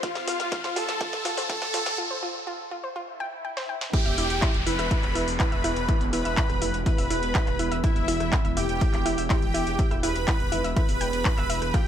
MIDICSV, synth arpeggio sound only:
0, 0, Header, 1, 2, 480
1, 0, Start_track
1, 0, Tempo, 487805
1, 31, Time_signature, 4, 2, 24, 8
1, 11685, End_track
2, 0, Start_track
2, 0, Title_t, "Synth arpeggio sound"
2, 0, Program_c, 0, 84
2, 30, Note_on_c, 0, 65, 100
2, 86, Note_off_c, 0, 65, 0
2, 270, Note_on_c, 0, 65, 104
2, 363, Note_off_c, 0, 65, 0
2, 509, Note_on_c, 0, 65, 109
2, 625, Note_off_c, 0, 65, 0
2, 631, Note_on_c, 0, 72, 81
2, 745, Note_off_c, 0, 72, 0
2, 750, Note_on_c, 0, 65, 100
2, 806, Note_off_c, 0, 65, 0
2, 990, Note_on_c, 0, 65, 101
2, 1083, Note_off_c, 0, 65, 0
2, 1230, Note_on_c, 0, 65, 102
2, 1346, Note_off_c, 0, 65, 0
2, 1352, Note_on_c, 0, 72, 73
2, 1466, Note_off_c, 0, 72, 0
2, 1471, Note_on_c, 0, 65, 106
2, 1527, Note_off_c, 0, 65, 0
2, 1710, Note_on_c, 0, 65, 104
2, 1803, Note_off_c, 0, 65, 0
2, 1950, Note_on_c, 0, 65, 104
2, 2065, Note_off_c, 0, 65, 0
2, 2072, Note_on_c, 0, 72, 74
2, 2186, Note_off_c, 0, 72, 0
2, 2191, Note_on_c, 0, 65, 100
2, 2247, Note_off_c, 0, 65, 0
2, 2431, Note_on_c, 0, 65, 111
2, 2523, Note_off_c, 0, 65, 0
2, 2670, Note_on_c, 0, 65, 96
2, 2786, Note_off_c, 0, 65, 0
2, 2791, Note_on_c, 0, 72, 81
2, 2905, Note_off_c, 0, 72, 0
2, 2910, Note_on_c, 0, 65, 102
2, 2966, Note_off_c, 0, 65, 0
2, 3151, Note_on_c, 0, 79, 101
2, 3207, Note_off_c, 0, 79, 0
2, 3391, Note_on_c, 0, 79, 81
2, 3447, Note_off_c, 0, 79, 0
2, 3513, Note_on_c, 0, 72, 104
2, 3604, Note_off_c, 0, 72, 0
2, 3631, Note_on_c, 0, 79, 80
2, 3723, Note_off_c, 0, 79, 0
2, 3871, Note_on_c, 0, 64, 101
2, 3871, Note_on_c, 0, 76, 73
2, 3980, Note_off_c, 0, 76, 0
2, 3986, Note_off_c, 0, 64, 0
2, 3991, Note_on_c, 0, 76, 77
2, 3992, Note_on_c, 0, 88, 54
2, 4100, Note_off_c, 0, 76, 0
2, 4105, Note_off_c, 0, 88, 0
2, 4111, Note_on_c, 0, 76, 73
2, 4112, Note_on_c, 0, 64, 101
2, 4167, Note_off_c, 0, 64, 0
2, 4167, Note_off_c, 0, 76, 0
2, 4351, Note_on_c, 0, 64, 109
2, 4351, Note_on_c, 0, 76, 78
2, 4443, Note_off_c, 0, 64, 0
2, 4443, Note_off_c, 0, 76, 0
2, 4591, Note_on_c, 0, 64, 97
2, 4591, Note_on_c, 0, 76, 68
2, 4700, Note_off_c, 0, 76, 0
2, 4706, Note_off_c, 0, 64, 0
2, 4712, Note_on_c, 0, 76, 75
2, 4712, Note_on_c, 0, 88, 54
2, 4819, Note_off_c, 0, 76, 0
2, 4825, Note_off_c, 0, 88, 0
2, 4831, Note_on_c, 0, 64, 106
2, 4831, Note_on_c, 0, 76, 70
2, 4886, Note_off_c, 0, 64, 0
2, 4886, Note_off_c, 0, 76, 0
2, 5070, Note_on_c, 0, 64, 101
2, 5070, Note_on_c, 0, 76, 72
2, 5163, Note_off_c, 0, 64, 0
2, 5163, Note_off_c, 0, 76, 0
2, 5310, Note_on_c, 0, 64, 105
2, 5310, Note_on_c, 0, 76, 75
2, 5420, Note_off_c, 0, 76, 0
2, 5426, Note_off_c, 0, 64, 0
2, 5431, Note_on_c, 0, 88, 52
2, 5432, Note_on_c, 0, 76, 74
2, 5539, Note_off_c, 0, 76, 0
2, 5545, Note_off_c, 0, 88, 0
2, 5550, Note_on_c, 0, 64, 99
2, 5551, Note_on_c, 0, 76, 68
2, 5606, Note_off_c, 0, 64, 0
2, 5606, Note_off_c, 0, 76, 0
2, 5791, Note_on_c, 0, 64, 108
2, 5791, Note_on_c, 0, 76, 71
2, 5883, Note_off_c, 0, 64, 0
2, 5884, Note_off_c, 0, 76, 0
2, 6030, Note_on_c, 0, 64, 101
2, 6030, Note_on_c, 0, 76, 70
2, 6139, Note_off_c, 0, 76, 0
2, 6145, Note_off_c, 0, 64, 0
2, 6151, Note_on_c, 0, 76, 74
2, 6151, Note_on_c, 0, 88, 54
2, 6260, Note_off_c, 0, 76, 0
2, 6265, Note_off_c, 0, 88, 0
2, 6271, Note_on_c, 0, 64, 108
2, 6271, Note_on_c, 0, 76, 74
2, 6327, Note_off_c, 0, 64, 0
2, 6327, Note_off_c, 0, 76, 0
2, 6511, Note_on_c, 0, 64, 97
2, 6511, Note_on_c, 0, 76, 68
2, 6603, Note_off_c, 0, 76, 0
2, 6604, Note_off_c, 0, 64, 0
2, 6751, Note_on_c, 0, 76, 72
2, 6752, Note_on_c, 0, 64, 105
2, 6860, Note_off_c, 0, 76, 0
2, 6866, Note_off_c, 0, 64, 0
2, 6872, Note_on_c, 0, 76, 77
2, 6872, Note_on_c, 0, 88, 56
2, 6979, Note_off_c, 0, 76, 0
2, 6986, Note_off_c, 0, 88, 0
2, 6990, Note_on_c, 0, 64, 102
2, 6991, Note_on_c, 0, 76, 72
2, 7046, Note_off_c, 0, 64, 0
2, 7047, Note_off_c, 0, 76, 0
2, 7231, Note_on_c, 0, 64, 102
2, 7231, Note_on_c, 0, 76, 71
2, 7324, Note_off_c, 0, 64, 0
2, 7324, Note_off_c, 0, 76, 0
2, 7472, Note_on_c, 0, 64, 102
2, 7472, Note_on_c, 0, 76, 69
2, 7580, Note_off_c, 0, 76, 0
2, 7586, Note_off_c, 0, 64, 0
2, 7592, Note_on_c, 0, 76, 77
2, 7592, Note_on_c, 0, 88, 51
2, 7699, Note_off_c, 0, 76, 0
2, 7706, Note_off_c, 0, 88, 0
2, 7711, Note_on_c, 0, 64, 107
2, 7711, Note_on_c, 0, 76, 74
2, 7766, Note_off_c, 0, 64, 0
2, 7767, Note_off_c, 0, 76, 0
2, 7951, Note_on_c, 0, 64, 107
2, 7951, Note_on_c, 0, 76, 74
2, 8043, Note_off_c, 0, 64, 0
2, 8043, Note_off_c, 0, 76, 0
2, 8191, Note_on_c, 0, 64, 103
2, 8191, Note_on_c, 0, 76, 75
2, 8300, Note_off_c, 0, 76, 0
2, 8306, Note_off_c, 0, 64, 0
2, 8311, Note_on_c, 0, 76, 83
2, 8312, Note_on_c, 0, 88, 54
2, 8419, Note_off_c, 0, 76, 0
2, 8425, Note_off_c, 0, 88, 0
2, 8431, Note_on_c, 0, 64, 94
2, 8431, Note_on_c, 0, 76, 68
2, 8487, Note_off_c, 0, 64, 0
2, 8487, Note_off_c, 0, 76, 0
2, 8670, Note_on_c, 0, 64, 104
2, 8670, Note_on_c, 0, 76, 70
2, 8763, Note_off_c, 0, 64, 0
2, 8763, Note_off_c, 0, 76, 0
2, 8910, Note_on_c, 0, 64, 99
2, 8911, Note_on_c, 0, 76, 70
2, 9019, Note_off_c, 0, 76, 0
2, 9026, Note_off_c, 0, 64, 0
2, 9031, Note_on_c, 0, 76, 76
2, 9031, Note_on_c, 0, 88, 52
2, 9138, Note_off_c, 0, 76, 0
2, 9145, Note_off_c, 0, 88, 0
2, 9150, Note_on_c, 0, 64, 107
2, 9150, Note_on_c, 0, 76, 77
2, 9206, Note_off_c, 0, 64, 0
2, 9206, Note_off_c, 0, 76, 0
2, 9390, Note_on_c, 0, 64, 102
2, 9390, Note_on_c, 0, 76, 70
2, 9483, Note_off_c, 0, 64, 0
2, 9483, Note_off_c, 0, 76, 0
2, 9630, Note_on_c, 0, 64, 102
2, 9630, Note_on_c, 0, 76, 73
2, 9739, Note_off_c, 0, 76, 0
2, 9746, Note_off_c, 0, 64, 0
2, 9751, Note_on_c, 0, 76, 78
2, 9751, Note_on_c, 0, 88, 51
2, 9859, Note_off_c, 0, 76, 0
2, 9865, Note_off_c, 0, 88, 0
2, 9871, Note_on_c, 0, 64, 102
2, 9871, Note_on_c, 0, 76, 72
2, 9927, Note_off_c, 0, 64, 0
2, 9927, Note_off_c, 0, 76, 0
2, 10111, Note_on_c, 0, 64, 108
2, 10111, Note_on_c, 0, 76, 76
2, 10203, Note_off_c, 0, 76, 0
2, 10204, Note_off_c, 0, 64, 0
2, 10351, Note_on_c, 0, 64, 100
2, 10351, Note_on_c, 0, 76, 72
2, 10461, Note_off_c, 0, 76, 0
2, 10466, Note_off_c, 0, 64, 0
2, 10473, Note_on_c, 0, 76, 77
2, 10473, Note_on_c, 0, 88, 51
2, 10580, Note_off_c, 0, 76, 0
2, 10586, Note_off_c, 0, 88, 0
2, 10592, Note_on_c, 0, 64, 99
2, 10592, Note_on_c, 0, 76, 68
2, 10647, Note_off_c, 0, 64, 0
2, 10647, Note_off_c, 0, 76, 0
2, 10832, Note_on_c, 0, 79, 75
2, 10832, Note_on_c, 0, 91, 51
2, 10924, Note_off_c, 0, 79, 0
2, 10924, Note_off_c, 0, 91, 0
2, 11071, Note_on_c, 0, 64, 87
2, 11071, Note_on_c, 0, 76, 59
2, 11127, Note_off_c, 0, 64, 0
2, 11127, Note_off_c, 0, 76, 0
2, 11192, Note_on_c, 0, 88, 96
2, 11283, Note_off_c, 0, 88, 0
2, 11312, Note_on_c, 0, 76, 104
2, 11312, Note_on_c, 0, 88, 74
2, 11426, Note_off_c, 0, 76, 0
2, 11426, Note_off_c, 0, 88, 0
2, 11551, Note_on_c, 0, 65, 101
2, 11551, Note_on_c, 0, 77, 69
2, 11666, Note_off_c, 0, 65, 0
2, 11666, Note_off_c, 0, 77, 0
2, 11685, End_track
0, 0, End_of_file